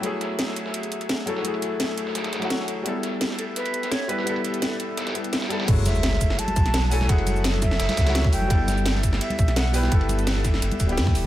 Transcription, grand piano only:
\new Staff \with { instrumentName = "Grand piano" } { \time 4/4 \key fis \phrygian \tempo 4 = 170 <fis a e' gis'>2.~ <fis a e' gis'>8 <fis a e' a'>16 r16 | <fis a e' gis'>2~ <fis a e' gis'>8. <fis a e' fis'>4~ <fis a e' fis'>16 | <g b e' a'>2.~ <g b e' a'>8 <g b e' b'>16 r16 | <g b e' a'>2~ <g b e' a'>8 <g b e' a'>4 <g b e' a'>8 |
<fis gis a e'>2.~ <fis gis a e'>8 <fis a e' a'>16 r16 | <fis a e' gis'>2~ <fis a e' gis'>8. <fis a e' fis'>4~ <fis a e' fis'>16 | <g b e' a'>2.~ <g b e' a'>8 <g b e' b'>16 r16 | <g b e' a'>2~ <g b e' a'>8. <g b e' g'>4~ <g b e' g'>16 | }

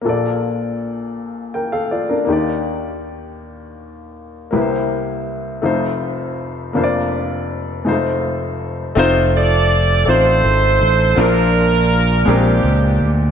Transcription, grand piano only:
<<
  \new Staff \with { instrumentName = "Grand piano" } { \time 6/8 \key bes \major \tempo 4. = 54 << { r2 <bes' g''>16 <a' f''>16 <f' d''>16 <d' bes'>16~ | <d' bes'>16 r2 r8. | r2. | r2. |
r2. | r2. | } \\ { <bes f' a' d''>2. | <bes ees' g' d''>2. | <bes e' g' ces'' c''>4. <a ees' f' c''>4. | <bes d' f' c'' d''>4. <aes a ees' f' c''>4. |
<a c' ees' f' c''>4 r8 <a c' ees' f' c''>4 r8 | <f bes d' f' bes'>4 r8 <aes c' d' g' bes'>4 r8 | } >> }
  \new Staff \with { instrumentName = "Grand piano" } { \clef bass \time 6/8 \key bes \major <bes,, bes,>2. | <ees, ees>2. | <c, c>4. <f,, f,>4. | <f,, f,>4. <f,, f,>4. |
r2. | bes,4. bes,4. | }
>>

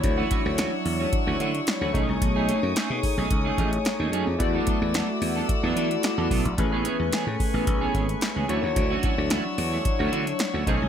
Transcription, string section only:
\new Staff \with { instrumentName = "String section" } { \time 4/4 \key d \lydian \tempo 4 = 110 << { <fis'' cis''' e'''>2.~ <fis'' cis''' e'''>8 <gis'' dis'''>8~ | <gis'' dis'''>1 | <fis'' d''' e'''>1 | <gis'' b'' cis'''>2.~ <gis'' b'' cis'''>8 <fis'' e'''>8~ |
<fis'' e'''>2.~ <fis'' e'''>8 <gis'' dis'''>8 | } \\ { d'2.~ d'8 a8~ | a1~ | a1 | a2.~ a8 d'8~ |
d'2.~ d'8 a8 | } >> }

